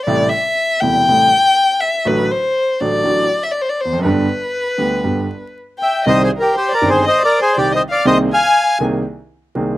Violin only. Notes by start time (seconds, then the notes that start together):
0.06 D5
0.29 E5
0.81 G5
1.80 E5
2.07 B4
2.31 C5
2.80 D5
3.43 E5
3.51 D5
3.61 C5
3.69 D5
3.81 C5
4.05 B4
5.79 G5
6.05 D#5
6.20 C5
6.37 A#4
6.55 C5
6.71 D5
6.88 C5
7.05 D#5
7.21 D5
7.39 C5
7.55 D5
7.72 D#5
7.90 F5
8.07 D#5
8.33 G#5